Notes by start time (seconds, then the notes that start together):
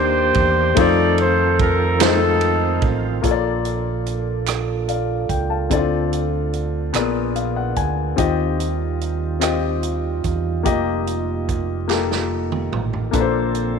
Already playing: D#2 D#3 A#3 D4 G4 A#4 C5 D5
0.34 E2, kick, ride
0.75 F2 D#3 F3 A3 C4 D#4 F4 A4 C5, kick, ride
0.79 D5
1.18 C5, ride
1.59 A#4, kick, ride
1.98 G#3 C4 D#4 F4 C5, snare, clap, ride
2.02 A3 D#4 A4
2.41 ride
2.82 A1, kick, ride
3.22 A#1 A#2 A#3 D4 F4 A4 C#5, kick, closed hi-hat
3.31 D5
3.65 closed hi-hat
4.06 closed hi-hat
4.47 cross-stick, clap, closed hi-hat
4.88 D5 F5, closed hi-hat
5.29 C#2 G5, kick, closed hi-hat
5.50 F5 A5
5.70 D2 D3 C4 E4 A4 D5, kick, closed hi-hat
5.77 F4
6.13 closed hi-hat
6.54 closed hi-hat
6.93 A#1 A#2 B3 G#4 A#4 D5, cross-stick, clap, closed hi-hat
7.36 F5, closed hi-hat
7.56 F#5
7.76 D2 G#5, kick, closed hi-hat
8.16 D#2 D#3 G3 C4 D#4 F4 G4 D#5, kick, closed hi-hat
8.60 closed hi-hat
9.01 closed hi-hat
9.40 C4 F4 G4 D#5, cross-stick, clap, closed hi-hat
9.83 closed hi-hat
10.24 E2, kick, closed hi-hat
10.63 F1 A#3 F4 G4 D#5, kick, closed hi-hat
11.07 closed hi-hat
11.49 kick, closed hi-hat
11.88 A#3 F4 G4 A4, snare, clap
12.11 snare
12.52 mid tom
12.72 A1, mid tom
12.93 floor tom
13.11 A#1 A#2 D3 A#3 C4 D4 A4 B4, kick, closed hi-hat
13.21 C5
13.55 closed hi-hat